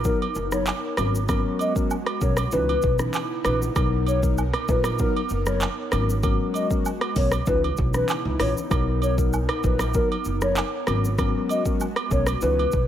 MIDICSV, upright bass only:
0, 0, Header, 1, 2, 480
1, 0, Start_track
1, 0, Key_signature, 5, "major"
1, 0, Tempo, 618557
1, 999, Time_signature, 4, 2, 24, 8
1, 9991, End_track
2, 0, Start_track
2, 0, Title_t, "Upright bass"
2, 0, Program_c, 0, 32
2, 279, Note_on_c, 0, 30, 88
2, 535, Note_off_c, 0, 30, 0
2, 758, Note_on_c, 0, 32, 102
2, 1095, Note_off_c, 0, 32, 0
2, 1719, Note_on_c, 0, 35, 99
2, 1887, Note_off_c, 0, 35, 0
2, 1959, Note_on_c, 0, 37, 103
2, 2127, Note_off_c, 0, 37, 0
2, 2201, Note_on_c, 0, 35, 93
2, 2369, Note_off_c, 0, 35, 0
2, 2678, Note_on_c, 0, 34, 102
2, 2847, Note_off_c, 0, 34, 0
2, 2918, Note_on_c, 0, 35, 106
2, 3493, Note_off_c, 0, 35, 0
2, 3637, Note_on_c, 0, 34, 107
2, 3894, Note_off_c, 0, 34, 0
2, 4118, Note_on_c, 0, 30, 91
2, 4374, Note_off_c, 0, 30, 0
2, 4598, Note_on_c, 0, 32, 102
2, 4935, Note_off_c, 0, 32, 0
2, 5558, Note_on_c, 0, 35, 109
2, 5727, Note_off_c, 0, 35, 0
2, 5798, Note_on_c, 0, 37, 111
2, 5967, Note_off_c, 0, 37, 0
2, 6041, Note_on_c, 0, 35, 96
2, 6209, Note_off_c, 0, 35, 0
2, 6404, Note_on_c, 0, 37, 99
2, 6485, Note_off_c, 0, 37, 0
2, 6520, Note_on_c, 0, 34, 90
2, 6607, Note_off_c, 0, 34, 0
2, 6759, Note_on_c, 0, 35, 107
2, 7334, Note_off_c, 0, 35, 0
2, 7479, Note_on_c, 0, 34, 101
2, 7735, Note_off_c, 0, 34, 0
2, 7959, Note_on_c, 0, 30, 88
2, 8215, Note_off_c, 0, 30, 0
2, 8439, Note_on_c, 0, 32, 108
2, 8776, Note_off_c, 0, 32, 0
2, 9399, Note_on_c, 0, 35, 102
2, 9568, Note_off_c, 0, 35, 0
2, 9640, Note_on_c, 0, 37, 115
2, 9808, Note_off_c, 0, 37, 0
2, 9881, Note_on_c, 0, 35, 92
2, 9991, Note_off_c, 0, 35, 0
2, 9991, End_track
0, 0, End_of_file